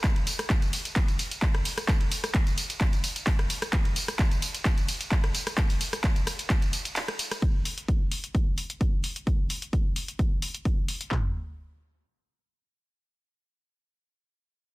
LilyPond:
\new DrumStaff \with { instrumentName = "Drums" } \drummode { \time 4/4 \tempo 4 = 130 <hc hh bd cymr ss tamb>16 cymr16 <hho cymr tamb>16 <hh cymr ss>16 <hc hh bd cymr tamb>16 <cymr tamb>16 <hho cymr tamb>16 <hh cymr tamb>16 <hc hh bd cymr tamb>16 <cymr tamb>16 <hho cymr tamb>16 <hh cymr tamb>16 <hc hh bd cymr tamb>16 <cymr ss>16 <hho cymr tamb>16 <hh cymr ss tamb>16 | <hc hh bd cymr ss tamb>16 cymr16 <hho cymr tamb>16 <hh cymr ss tamb>16 <hc hh bd cymr>16 <cymr tamb>16 <hho cymr tamb>16 <hh cymr tamb>16 <hc hh bd cymr tamb>16 <cymr tamb>16 <hho cymr tamb>16 <hh cymr tamb>16 <hc hho bd cymr tamb>16 <cymr ss>16 <hho cymr tamb>16 <hh cymr ss tamb>16 | <hc hh bd cymr ss tamb>16 cymr16 <hho cymr tamb>16 <hh cymr ss tamb>16 <hc hh bd cymr tamb>16 <cymr tamb>16 <hho cymr tamb>16 <hh cymr tamb>16 <hc hh bd cymr tamb>16 <cymr tamb>16 <hho cymr tamb>16 <hh cymr tamb>16 <hc hh bd cymr tamb>16 <cymr ss>16 <hho cymr tamb>16 <hh cymr ss tamb>16 | <hc hh bd cymr ss tamb>16 <hho cymr tamb>16 <hho cymr tamb>16 <hh cymr ss tamb>16 <hc hh bd cymr tamb>16 <cymr tamb>16 <hho cymr ss tamb>16 <hh cymr tamb>16 <hc hh bd cymr tamb>16 <cymr tamb>16 <hho cymr tamb>16 <hh cymr tamb>16 <hc hho cymr tamb>16 <cymr ss>16 <hho cymr tamb>16 <hh cymr ss tamb>16 |
<hh bd>8 hho16 hh16 <hh bd>8 hho16 hh16 <hh bd>8 hho16 hh16 <hh bd>8 hho16 hh16 | <hh bd>8 hho16 hh16 <hh bd>8 hho16 hh16 <hh bd>8 hho16 hh16 <hh bd>8 hho16 hh16 | <hc bd tomfh>4 r4 r4 r4 | r4 r4 r4 r4 | }